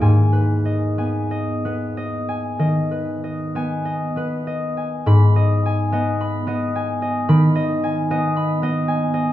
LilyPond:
<<
  \new Staff \with { instrumentName = "Harp" } { \time 4/4 \key gis \minor \tempo 4 = 53 << { gis''1 | b''1 | } \\ { dis''16 b'16 dis''16 gis''16 dis''16 b'16 dis''16 gis''16 dis''16 b'16 dis''16 gis''16 dis''16 b'16 dis''16 gis''16~ | gis''16 dis''16 gis''16 dis''16 b''16 dis''16 gis''16 dis''16 b''16 dis''16 gis''16 dis''16 b''16 dis''16 gis''16 dis''16 | } >> }
  \new Staff \with { instrumentName = "Harp" } { \time 4/4 \key gis \minor gis,8. b8 b8. dis8. b8 b8. | gis,8. b8 b8. dis8. b8 b8. | }
>>